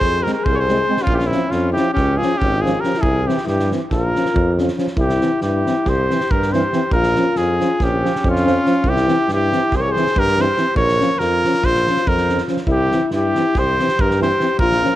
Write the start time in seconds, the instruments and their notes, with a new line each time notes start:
Already playing: alto saxophone G#4, trumpet C5
0.01 tuba F2, kick, snare
0.22 euphonium G#3, alto saxophone G4, trumpet A#4
0.26 euphonium C4, snare
0.31 alto saxophone G4, trumpet A#4
0.39 alto saxophone G#4
0.44 tuba C2, trumpet C5, kick
0.49 alto saxophone G#4 A#4
0.55 trumpet C5 C#5
0.68 euphonium G#3 C4, snare
0.88 euphonium G#3 C4
0.97 snare
1.02 alto saxophone C#4, trumpet F4
1.07 tuba A#1, kick
1.12 alto saxophone C#4 E4, trumpet G4
1.16 trumpet F4, snare
1.26 alto saxophone C4, trumpet E4
1.32 euphonium F3 C#4, snare
1.47 alto saxophone C#4, trumpet F4
1.51 tuba F2, snare
1.72 euphonium C#4, alto saxophone E4, trumpet G4
1.76 euphonium F3, snare
1.93 tuba C#2, alto saxophone C#4, trumpet G4, kick, snare
2.17 alto saxophone F4, trumpet G#4
2.22 euphonium F3 C#4, snare
2.37 alto saxophone C#4, trumpet G4
2.41 tuba G#1, kick
2.59 alto saxophone F4, trumpet G#4
2.64 euphonium F3 C#4, snare
2.79 alto saxophone G4, trumpet A#4
2.83 euphonium F3 C#4, snare
2.94 alto saxophone E4, snare
3.02 tuba C2, trumpet G#4, kick
3.24 euphonium C4, alto saxophone E4, trumpet G4
3.28 euphonium E3, snare
3.38 snare
3.43 tuba G2, alto saxophone E4
3.47 trumpet G4, snare
3.59 snare
3.71 euphonium E3 C4, snare
3.90 tuba A#1, alto saxophone F4, trumpet A#4, kick, snare
4.16 euphonium F3 C#4, snare
4.25 snare
4.35 tuba F2, kick
4.58 euphonium F3 C#4, snare
4.68 snare
4.77 euphonium F3 C#4, snare
4.87 snare
4.97 tuba C2, alto saxophone E4, trumpet G4, kick
5.09 snare
5.21 euphonium E3 C4, snare
5.41 tuba G2, alto saxophone E4, trumpet G4, snare
5.66 euphonium E3 C4, snare
5.86 tuba C2, alto saxophone G4, trumpet C5, kick, snare
6.10 euphonium E3 C4, snare
6.20 snare
6.31 tuba G2, alto saxophone G4, trumpet A#4, kick
6.42 snare
6.52 euphonium E3 C4, alto saxophone G4, trumpet C5, snare
6.73 euphonium E3 C4, snare
6.91 tuba A#1, alto saxophone F4, trumpet A#4, kick
7.03 snare
7.15 euphonium F3 C#4, snare
7.36 tuba F2, alto saxophone F4, trumpet G#4, snare
7.60 euphonium F3 C#4, snare
7.80 tuba A#1, alto saxophone C#4, trumpet G4, kick, snare
8.03 euphonium F3 C#4, snare
8.16 snare
8.24 tuba F2, alto saxophone C#4, kick
8.30 trumpet F4
8.36 snare
8.44 euphonium F3 C#4, snare
8.64 euphonium F3 C#4, snare
8.84 tuba C2, kick
8.88 alto saxophone E4, trumpet G4
8.97 snare
9.07 euphonium E3 C4, snare
9.28 tuba G2, alto saxophone E4, snare
9.33 trumpet G4
9.52 euphonium E3 C4, snare
9.72 tuba C2, alto saxophone G4, kick, snare
9.76 alto saxophone A#4, trumpet C5
9.81 trumpet C#5
9.89 alto saxophone G#4, trumpet C5
9.96 euphonium E3 C4, snare
10.07 snare
10.16 tuba G2, alto saxophone G4, trumpet A#4, kick
10.27 snare
10.38 euphonium E3 C4, alto saxophone G4, trumpet C5, snare
10.56 euphonium E3 C4, snare
10.75 tuba A#1, alto saxophone A#4, trumpet C#5, kick
10.88 snare
11.00 euphonium F3 C#4, snare
11.19 tuba F2, alto saxophone F4, trumpet A#4, snare
11.44 euphonium F3 C#4, snare
11.54 snare
11.63 tuba A#1, alto saxophone F4, trumpet C5, kick, snare
11.75 snare
11.87 euphonium F3 C#4, snare
11.97 snare
12.07 tuba F2, alto saxophone F4, trumpet A#4, kick
12.17 snare
12.29 euphonium F3 C#4, snare
12.38 snare
12.48 euphonium F3 C#4, snare
12.57 snare
12.67 tuba C2, alto saxophone E4, trumpet G4, kick
12.91 euphonium E3 C4, snare
13.11 tuba G2, alto saxophone E4, snare
13.16 trumpet G4
13.35 euphonium E3 C4, snare
13.55 tuba C2, alto saxophone G4, trumpet C5, kick, snare
13.79 euphonium E3 C4, snare
13.88 snare
13.99 tuba G2, alto saxophone G4, trumpet A#4, kick
14.11 snare
14.21 euphonium E3 C4, alto saxophone G4, trumpet C5, snare
14.39 euphonium E3 C4, snare
14.59 tuba A#1, alto saxophone F4, trumpet A#4, kick
14.72 snare
14.83 euphonium F3 C#4, snare